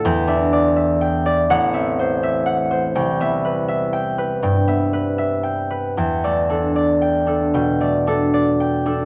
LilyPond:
<<
  \new Staff \with { instrumentName = "Harp" } { \time 4/4 \key e \minor \tempo 4 = 81 << { g''2 fis''2 | g''1 | g''1 | } \\ { \tuplet 3/2 { e''8 e''8 d''8 e''8 g''8 d''8 r8 e''8 c''8 e''8 fis''8 c''8~ } | \tuplet 3/2 { c''8 e''8 b'8 e''8 g''8 b'8 g''8 e''8 b'8 e''8 g''8 b'8~ } | \tuplet 3/2 { b'8 d''8 a'8 d''8 g''8 a'8 g''8 d''8 a'8 d''8 g''8 a'8 } | } >> }
  \new Staff \with { instrumentName = "Harp" } { \time 4/4 \key e \minor \tuplet 3/2 { e,8 d'4~ } d'4 \tuplet 3/2 { a,,8 c'4~ } c'4 | \tuplet 3/2 { c,8 b4~ } b4 \tuplet 3/2 { g,8 b4~ } b4 | \tuplet 3/2 { e,8 a8 d'8~ d'4 d'8 b,8 a8 d'8~ d'4 d'8 } | }
>>